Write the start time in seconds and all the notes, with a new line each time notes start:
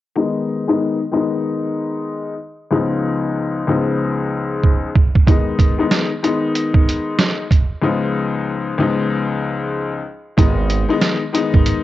0.16 D#3 G#3 B3 D#4
0.67 D#3 G#3 B3 D#4
1.12 D#3 G#3 B3 D#4
2.71 C#2 F3 G#3 B3 D#4
3.67 C#2 F3 G#3 B3 D#4
4.64 kick
4.96 kick
5.15 kick
5.27 D#3 G#3 B3 D#4, kick, closed hi-hat
5.59 kick, closed hi-hat
5.78 D#3 G#3 B3 D#4
5.91 snare, closed hi-hat
6.23 D#3 G#3 B3 D#4, closed hi-hat
6.55 closed hi-hat
6.74 kick
6.89 closed hi-hat
7.19 snare, closed hi-hat
7.51 kick, closed hi-hat
7.82 C#2 F3 G#3 B3 D#4
8.78 C#2 F3 G#3 B3 D#4
10.37 G#1 D#3 G#3 B3 D#4, kick, closed hi-hat
10.70 closed hi-hat
10.88 D#3 G#3 B3 D#4
11.02 snare, closed hi-hat
11.33 D#3 G#3 B3 D#4, closed hi-hat
11.54 G#1, kick
11.66 closed hi-hat